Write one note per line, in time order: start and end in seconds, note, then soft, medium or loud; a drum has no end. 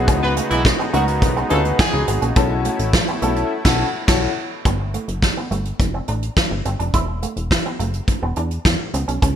0.00 2.34 C#3 medium
0.00 2.34 G#3 medium
0.00 0.70 B3 medium
0.00 4.62 B3 medium
0.00 0.71 D#4 medium
0.00 2.34 D#4 medium
0.00 0.71 F#4 medium
0.00 2.33 F#4 medium
0.00 0.71 G#4 loud
0.08 0.41 C#2 loud
0.08 0.19 C#4 loud
0.08 kick loud
0.08 closed hi-hat loud
0.22 0.34 B3 medium
0.22 0.34 F#4 medium
0.22 0.34 G#4 medium
0.22 0.34 B4 medium
0.22 muted clean electric guitar stroke soft
0.37 0.47 A3 medium
0.37 closed hi-hat medium
0.51 0.72 B1 medium
0.51 0.62 E3 medium
0.51 0.62 G#3 medium
0.51 0.62 B3 medium
0.51 0.62 E4 loud
0.51 closed hi-hat medium
0.65 muted clean electric guitar stroke soft
0.65 kick loud
0.65 snare loud
0.79 0.90 B3 medium
0.79 closed hi-hat soft
0.93 1.24 C#2 loud
0.93 1.05 F#3 medium
0.93 1.04 A3 loud
0.93 1.28 B3 medium
0.93 1.05 B3 medium
0.93 1.28 D#4 medium
0.93 1.05 D#4 medium
0.93 1.28 F#4 medium
0.93 1.05 F#4 medium
0.93 1.28 A#4 medium
0.93 closed hi-hat medium
1.08 closed hi-hat medium
1.22 1.44 B1 medium
1.22 muted clean electric guitar stroke soft
1.22 kick loud
1.22 closed hi-hat medium
1.36 1.47 B3 medium
1.36 closed hi-hat soft
1.49 1.73 D2 medium
1.49 1.62 A3 medium
1.49 1.76 B3 loud
1.49 1.61 C#4 medium
1.49 1.62 C#4 loud
1.49 1.76 D#4 medium
1.49 1.62 F4 medium
1.49 1.76 F#4 medium
1.49 1.77 G#4 loud
1.49 1.62 A4 medium
1.49 closed hi-hat medium
1.65 closed hi-hat medium
1.79 2.03 G#3 loud
1.79 2.02 B3 medium
1.79 2.02 D#4 loud
1.79 2.03 G#4 loud
1.79 muted clean electric guitar stroke soft
1.79 kick loud
1.79 snare loud
1.93 2.04 C#2 medium
1.93 2.19 B3 medium
1.93 2.19 D#4 medium
1.93 2.19 F#4 medium
1.93 2.20 G#4 medium
1.93 closed hi-hat soft
2.08 2.19 G#1 medium
2.08 2.19 B3 medium
2.08 closed hi-hat medium
2.22 2.33 A#1 loud
2.22 2.33 C#4 medium
2.22 closed hi-hat medium
2.36 2.69 B1 loud
2.36 4.63 A3 medium
2.36 2.47 B3 medium
2.36 2.88 C#4 medium
2.36 2.88 E4 medium
2.36 4.63 E4 medium
2.36 2.89 F#4 medium
2.36 2.89 A4 loud
2.36 kick loud
2.36 closed hi-hat loud
2.51 muted clean electric guitar stroke soft
2.65 2.76 A3 medium
2.65 closed hi-hat medium
2.79 3.01 A1 medium
2.79 closed hi-hat medium
2.93 muted clean electric guitar stroke soft
2.93 kick loud
2.93 snare loud
3.08 3.19 B3 medium
3.08 closed hi-hat soft
3.22 3.44 B1 loud
3.22 3.33 A3 loud
3.22 3.51 C#4 medium
3.22 3.51 E4 medium
3.22 3.51 F#4 medium
3.22 3.51 A4 medium
3.22 closed hi-hat medium
3.36 closed hi-hat medium
3.65 3.84 B1 loud
3.65 3.84 C#4 loud
3.65 3.84 E4 loud
3.65 3.84 F#4 loud
3.65 3.85 A4 loud
3.65 kick loud
3.65 snare loud
3.65 crash medium
4.07 4.28 B1 loud
4.07 4.27 C#4 loud
4.07 4.27 E4 medium
4.07 4.27 F#4 loud
4.07 4.28 A4 loud
4.07 kick loud
4.07 snare loud
4.07 crash medium
4.65 4.98 G1 loud
4.65 4.76 B3 medium
4.65 kick loud
4.65 closed hi-hat loud
4.80 muted clean electric guitar stroke soft
4.94 5.05 A3 medium
4.94 closed hi-hat medium
5.08 5.30 F#1 medium
5.08 closed hi-hat medium
5.22 muted clean electric guitar stroke soft
5.22 kick loud
5.22 snare loud
5.37 5.48 B3 medium
5.51 5.73 G1 loud
5.51 5.62 A3 medium
5.51 closed hi-hat medium
5.65 closed hi-hat soft
5.80 6.01 F1 loud
5.80 muted clean electric guitar stroke soft
5.80 kick loud
5.80 closed hi-hat medium
5.94 6.05 C4 medium
6.08 6.30 A1 medium
6.08 6.19 D4 medium
6.08 closed hi-hat medium
6.23 closed hi-hat soft
6.37 muted clean electric guitar stroke soft
6.37 kick loud
6.37 snare loud
6.51 6.62 G1 loud
6.65 6.76 G1 medium
6.65 6.76 C4 medium
6.65 closed hi-hat medium
6.79 6.90 F1 medium
6.79 6.90 D4 medium
6.79 closed hi-hat medium
6.94 7.26 E1 loud
6.94 7.05 E4 medium
6.94 kick loud
6.94 closed hi-hat medium
7.08 muted clean electric guitar stroke soft
7.22 7.33 A3 medium
7.22 closed hi-hat medium
7.37 7.58 E1 medium
7.37 closed hi-hat medium
7.51 muted clean electric guitar stroke soft
7.51 kick medium
7.51 snare loud
7.65 7.76 B3 medium
7.65 closed hi-hat soft
7.79 8.01 F#1 medium
7.79 7.90 A3 medium
7.79 closed hi-hat medium
7.93 closed hi-hat medium
8.08 muted clean electric guitar stroke soft
8.08 kick loud
8.08 closed hi-hat medium
8.22 8.33 E1 loud
8.22 8.33 B3 medium
8.36 8.59 E2 loud
8.36 8.48 D4 medium
8.36 closed hi-hat medium
8.51 closed hi-hat medium
8.65 8.76 E2 medium
8.65 muted clean electric guitar stroke soft
8.65 kick loud
8.65 snare loud
8.94 9.05 C#2 loud
8.94 9.05 B3 medium
8.94 closed hi-hat medium
9.08 9.19 B1 medium
9.08 9.19 C#4 medium
9.08 closed hi-hat medium
9.22 9.36 C#2 loud
9.22 9.33 C#4 medium
9.22 kick loud
9.22 closed hi-hat loud